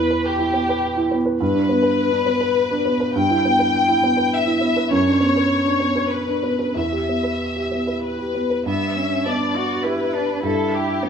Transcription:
Already playing: upright piano E2 B3 E4, violin section B4
0.10 upright piano B4
0.25 violin section G4
0.39 upright piano E4
0.53 upright piano B3
0.69 upright piano B4
0.97 upright piano E4
1.11 upright piano B3
1.26 upright piano B4
1.40 upright piano G2, violin section B4
1.55 upright piano D4
1.69 upright piano B3
1.82 upright piano B4
2.11 upright piano D4
2.26 upright piano B3
2.41 upright piano B4
2.71 upright piano D4
2.85 upright piano B3
3.00 upright piano B4
3.16 upright piano G2, violin section G5
3.30 upright piano E4
3.45 upright piano B3
3.59 upright piano B4
3.88 upright piano E4
4.03 upright piano B3
4.17 upright piano B4
4.33 violin section E5
4.47 upright piano E4
4.61 upright piano B3
4.76 upright piano B4
4.91 upright piano F#2, violin section C#5
5.06 upright piano D4
5.20 upright piano B3
5.36 upright piano B4
5.65 upright piano D4
5.80 upright piano B3
5.96 upright piano B4
6.11 violin section B4
6.27 upright piano D4
6.43 upright piano B3
6.59 upright piano B4
6.75 upright piano E2, violin section E5
6.92 upright piano G4
7.09 upright piano B3
7.23 upright piano B4
7.56 upright piano G4
7.71 upright piano B3
7.87 upright piano B4
8.02 violin section B4
8.19 upright piano G4
8.35 upright piano B3
8.50 upright piano B4
8.65 upright piano G2, cello B3, violin section E5
8.95 cello C#4
9.25 upright piano B3, cello D4, violin section D5
9.56 cello F#4
9.83 cello E4, upright piano G4 B4, violin section B4
10.14 cello D4
10.43 upright piano G2, cello E4, violin section A4
10.73 violin section G4
11.03 upright piano B3, cello B3

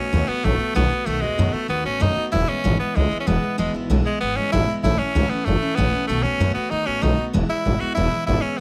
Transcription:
Already playing: tenor saxophone C#4, steel-string acoustic guitar F#4
0.00 steel-string acoustic guitar A3 B3
0.13 upright bass D#2, steel-string acoustic guitar B2 D#3 A3 B3 F#4
0.28 steel-string acoustic guitar A3 B3 F#4, tenor saxophone B3, muted upright bass stroke
0.43 upright bass A1, steel-string acoustic guitar D#3 A3 B3 F#4, tenor saxophone A3
0.59 steel-string acoustic guitar A3 B3 F#4, muted upright bass stroke
0.74 upright bass B1, steel-string acoustic guitar B2 D#3 A3 B3 F#4, tenor saxophone B3
0.90 steel-string acoustic guitar A3 B3 F#4
1.06 upright bass B1, steel-string acoustic guitar B2 D#3 A3 B3 F#4, tenor saxophone A3
1.21 upright bass D#2, tenor saxophone G#3, steel-string acoustic guitar A3 B3 F#4
1.38 upright bass F#2, steel-string acoustic guitar B2 D#3 A3 B3 F#4
1.53 tenor saxophone A3, steel-string acoustic guitar A3 B3 F#4, muted upright bass stroke
1.68 upright bass D#2, steel-string acoustic guitar D#3 A3 B3 F#4, tenor saxophone B3
1.84 upright bass A1, steel-string acoustic guitar A3 B3 F#4, tenor saxophone C#4
2.00 upright bass F#2, steel-string acoustic guitar B2 D#3 A3 B3 F#4, tenor saxophone D#4
2.16 steel-string acoustic guitar A3 B3 F#4, muted upright bass stroke
2.32 upright bass E1, steel-string acoustic guitar E2 B2 E3 G#3 B3 E4, tenor saxophone E4
2.47 steel-string acoustic guitar E3 G#3 B3 E4, tenor saxophone C#4, muted upright bass stroke
2.64 upright bass G#1, steel-string acoustic guitar E2 B2 E3 G#3 B3 E4
2.79 steel-string acoustic guitar E3 G#3 B3 E4, tenor saxophone B3, muted upright bass stroke
2.95 upright bass C#2, steel-string acoustic guitar E3 G#3 B3 E4, tenor saxophone G#3
3.11 steel-string acoustic guitar E3 G#3 B3 E4, muted upright bass stroke
3.20 tenor saxophone C#4
3.27 upright bass E1, steel-string acoustic guitar E2 B2 E3 G#3 B3 E4, tenor saxophone B3
3.42 steel-string acoustic guitar E3 G#3 B3 E4, muted upright bass stroke
3.58 upright bass E1, steel-string acoustic guitar E2 B2 E3 G#3 B3 E4, tenor saxophone G#3
3.74 upright bass G#1, steel-string acoustic guitar E3 G#3 B3 E4
3.90 upright bass B1, steel-string acoustic guitar E2 B2 E3 G#3 B3 E4
4.05 steel-string acoustic guitar E3 G#3 B3 E4, tenor saxophone G#3, muted upright bass stroke
4.20 upright bass G#1, steel-string acoustic guitar E3 G#3 B3 E4, tenor saxophone B3
4.36 upright bass C#2, steel-string acoustic guitar E3 G#3 B3 E4, tenor saxophone C#4
4.52 upright bass G#1, steel-string acoustic guitar E2 B2 E3 G#3 B3 E4, tenor saxophone E4
4.68 steel-string acoustic guitar E3 G#3 B3 E4, muted upright bass stroke
4.83 upright bass A1, steel-string acoustic guitar A2 E3 A3 C#4 E4, tenor saxophone E4
4.98 steel-string acoustic guitar A3 C#4 E4, tenor saxophone C#4, muted upright bass stroke
5.15 upright bass C#2, steel-string acoustic guitar A2 E3 A3 C#4 E4
5.30 steel-string acoustic guitar A3 C#4 E4, tenor saxophone B3, muted upright bass stroke
5.45 upright bass F#1, steel-string acoustic guitar E3 A3 C#4 E4, tenor saxophone A3
5.62 steel-string acoustic guitar A3 C#4 E4
5.75 upright bass A1, steel-string acoustic guitar A2 E3 A3 C#4 E4, tenor saxophone B3
5.93 steel-string acoustic guitar A3 C#4 E4, muted upright bass stroke
6.07 upright bass B1, steel-string acoustic guitar B2 D#3 A3 B3 F#4, tenor saxophone A3
6.23 upright bass D#2, steel-string acoustic guitar A3 B3 F#4, tenor saxophone C#4
6.40 upright bass F#2, steel-string acoustic guitar B2 D#3 A3 B3 F#4
6.54 steel-string acoustic guitar A3 B3 F#4, tenor saxophone B3, muted upright bass stroke
6.70 upright bass D#2, steel-string acoustic guitar D#3 A3 B3 F#4, tenor saxophone D#4
6.86 upright bass A1, steel-string acoustic guitar A3 B3 F#4, tenor saxophone C#4
7.01 upright bass B1, steel-string acoustic guitar B2 D#3 A3 B3 F#4, tenor saxophone D#4
7.17 steel-string acoustic guitar A3 B3 F#4, muted upright bass stroke
7.33 upright bass E1, steel-string acoustic guitar E2 B2 E3 G#3 B3 E4
7.49 steel-string acoustic guitar E3 G#3 B3 E4, tenor saxophone E4
7.65 upright bass G#1, steel-string acoustic guitar E3 G#3 B3 E4
7.80 steel-string acoustic guitar E3 G#3 B3 E4, tenor saxophone F#4
7.95 upright bass E1, steel-string acoustic guitar E2 B2 E3 G#3 B3 E4, tenor saxophone E4
8.11 steel-string acoustic guitar E3 G#3 B3 E4
8.26 upright bass G#1, steel-string acoustic guitar E3 G#3 B3 E4, tenor saxophone E4
8.42 steel-string acoustic guitar E3 G#3 B3 E4, tenor saxophone C#4

